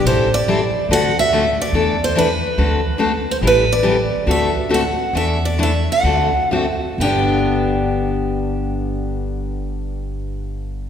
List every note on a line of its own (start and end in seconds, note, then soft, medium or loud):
0.04 0.72 A1 medium
0.04 0.27 E3 medium
0.04 0.27 G3 medium
0.04 0.28 C4 medium
0.04 0.27 E4 medium
0.04 0.28 A4 medium
0.04 0.31 C5 medium
0.34 0.87 D5 medium
0.48 0.59 E3 medium
0.48 0.59 G3 medium
0.48 0.60 C4 medium
0.48 0.59 E4 medium
0.48 0.60 A4 medium
0.89 1.56 D2 medium
0.89 1.12 D3 medium
0.89 1.12 A3 medium
0.89 1.12 C4 medium
0.89 1.12 F#4 medium
0.89 1.12 A4 medium
0.93 1.19 F#5 loud
1.19 1.61 E5 medium
1.32 1.43 D3 medium
1.32 1.44 A3 medium
1.32 1.44 C4 medium
1.32 1.44 F#4 medium
1.32 1.44 A4 medium
1.62 1.99 D5 medium
1.72 2.40 E2 medium
1.72 1.95 E3 medium
1.72 1.96 A3 medium
1.72 1.96 D4 medium
1.72 1.96 E4 medium
1.72 1.96 A4 medium
2.04 2.17 C5 medium
2.15 2.27 E3 medium
2.15 2.27 A3 medium
2.15 2.27 D4 loud
2.15 2.27 E4 medium
2.15 2.28 A4 medium
2.15 2.97 B4 loud
2.57 3.25 D2 medium
2.57 2.79 D3 medium
2.57 2.79 A3 medium
2.57 2.80 C4 medium
2.57 2.80 F#4 medium
2.57 2.79 A4 medium
2.98 3.10 D3 medium
2.98 3.11 A3 medium
2.98 3.11 C4 medium
2.98 3.11 F#4 loud
2.98 3.11 A4 medium
3.31 3.36 C5 medium
3.41 4.09 A1 medium
3.41 3.63 E3 medium
3.41 3.64 G3 medium
3.41 3.64 C4 medium
3.41 3.64 E4 medium
3.41 3.64 A4 medium
3.47 3.72 B4 medium
3.72 4.30 D5 medium
3.83 3.95 E3 medium
3.83 3.95 G3 medium
3.83 3.95 C4 medium
3.83 3.95 E4 medium
3.83 3.95 A4 medium
4.26 4.96 D2 medium
4.26 4.49 D3 medium
4.26 4.49 A3 medium
4.26 4.49 C4 medium
4.26 4.49 F#4 medium
4.26 4.49 A4 medium
4.31 4.69 E5 medium
4.69 4.81 D3 medium
4.69 4.82 A3 medium
4.69 4.82 C4 medium
4.69 4.82 F#4 loud
4.69 4.82 A4 medium
4.74 5.16 F#5 medium
5.13 5.86 E2 medium
5.13 5.37 E3 medium
5.13 5.37 A3 medium
5.13 5.37 D4 medium
5.13 5.37 E4 medium
5.13 5.37 A4 medium
5.13 5.44 E5 medium
5.45 5.59 D5 medium
5.58 5.70 E3 medium
5.58 5.71 A3 medium
5.58 5.71 D4 medium
5.58 5.71 E4 medium
5.58 5.71 A4 medium
5.63 5.87 E5 medium
5.92 6.56 F#5 medium
6.03 6.80 D2 medium
6.03 6.28 D3 medium
6.03 6.28 A3 medium
6.03 6.28 C4 medium
6.03 6.29 F#4 medium
6.03 6.29 A4 medium
6.51 6.64 D3 medium
6.51 6.64 A3 medium
6.51 6.65 C4 medium
6.51 6.65 F#4 medium
6.51 6.65 A4 medium
6.56 6.80 E5 medium
6.98 10.90 G1 medium
6.98 10.90 G2 medium
6.98 10.90 D3 medium
6.98 10.90 B3 medium
6.98 10.90 G5 medium
7.03 10.90 D4 medium
7.03 10.90 G4 medium